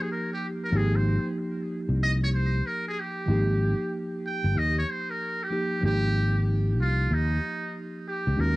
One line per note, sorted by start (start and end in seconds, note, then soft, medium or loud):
0.00 0.69 F3 medium
0.00 0.70 A#3 medium
0.00 0.71 D#4 medium
0.00 0.71 G4 medium
0.00 0.11 G#4 medium
0.11 0.29 A#4 medium
0.33 0.47 G4 medium
0.64 0.78 A#4 medium
0.71 1.17 G#1 loud
0.71 3.23 F3 medium
0.71 3.24 A#3 medium
0.71 3.25 D#4 medium
0.75 3.25 G4 medium
0.75 0.97 G#4 medium
0.96 1.27 C5 medium
1.89 2.61 C2 medium
2.03 2.12 D#5 loud
2.24 2.28 C#5 loud
2.34 2.68 C5 loud
2.67 2.86 A#4 loud
2.88 3.01 G#4 loud
3.00 3.94 G4 medium
3.26 3.73 G#1 loud
3.26 5.46 F3 medium
3.26 5.47 A#3 medium
3.26 5.48 D#4 medium
3.31 5.49 G4 medium
4.26 4.59 G5 loud
4.44 4.54 G1 medium
4.56 4.83 D#2 medium
4.56 4.77 D#5 loud
4.78 4.91 C#5 loud
4.90 5.12 C5 loud
5.10 5.45 A#4 medium
5.43 5.85 G4 medium
5.50 5.79 F3 medium
5.50 5.81 A#3 soft
5.50 5.83 D#4 soft
5.50 5.84 G4 medium
5.80 6.79 G#1 loud
5.80 8.33 F3 medium
5.80 8.34 A#3 medium
5.80 8.35 D#4 medium
5.85 6.44 G4 loud
5.85 8.36 G4 medium
6.79 7.06 C2 medium
6.79 7.15 F4 loud
7.11 7.38 D#2 loud
7.11 7.76 D#4 loud
8.08 8.42 G4 medium
8.27 8.37 C#2 medium
8.36 8.56 D#2 loud
8.36 8.56 G#3 medium
8.36 8.56 C#4 medium
8.36 8.56 F#4 medium
8.40 8.56 A#4 loud
8.40 8.56 A#4 medium